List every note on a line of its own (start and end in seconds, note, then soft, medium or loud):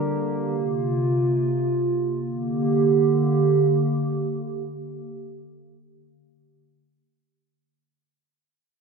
0.00 0.49 D3 medium
0.00 0.53 G3 medium
0.00 2.17 A#3 medium
0.00 0.52 D4 medium
0.00 0.50 G4 medium
0.00 0.53 A#4 loud
0.51 2.18 C3 medium
0.51 2.18 F4 medium
2.20 6.34 D3 medium
2.20 6.34 A#3 medium
2.20 6.34 G4 medium